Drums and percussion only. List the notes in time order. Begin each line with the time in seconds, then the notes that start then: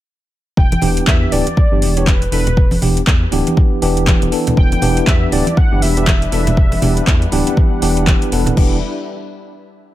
0.57 kick
0.72 closed hi-hat, high conga
0.82 open hi-hat, low conga
0.97 closed hi-hat
1.07 kick, clap
1.32 open hi-hat
1.47 closed hi-hat, high conga
1.57 kick
1.82 open hi-hat
1.97 closed hi-hat
2.07 kick, clap, high conga
2.22 closed hi-hat
2.32 open hi-hat
2.47 closed hi-hat, low conga
2.57 kick
2.71 open hi-hat, high conga
2.82 open hi-hat, low conga
2.97 closed hi-hat
3.07 kick, clap
3.32 open hi-hat
3.47 closed hi-hat, high conga
3.57 kick
3.82 open hi-hat
3.97 closed hi-hat
4.07 kick, clap, high conga
4.22 closed hi-hat
4.32 open hi-hat
4.47 closed hi-hat, low conga
4.57 kick
4.72 closed hi-hat, high conga
4.82 open hi-hat, low conga
4.97 closed hi-hat
5.07 kick, clap
5.32 open hi-hat
5.47 closed hi-hat, high conga
5.57 kick
5.82 open hi-hat
5.97 closed hi-hat
6.07 kick, clap, high conga
6.22 closed hi-hat
6.32 open hi-hat
6.47 closed hi-hat, low conga
6.57 kick
6.72 open hi-hat, high conga
6.82 open hi-hat, low conga
6.97 closed hi-hat
7.07 kick, clap
7.22 closed hi-hat
7.32 open hi-hat
7.47 closed hi-hat, high conga
7.57 kick
7.82 open hi-hat
7.97 closed hi-hat
8.07 kick, clap, high conga
8.22 closed hi-hat
8.32 open hi-hat
8.46 closed hi-hat, low conga
8.57 kick, crash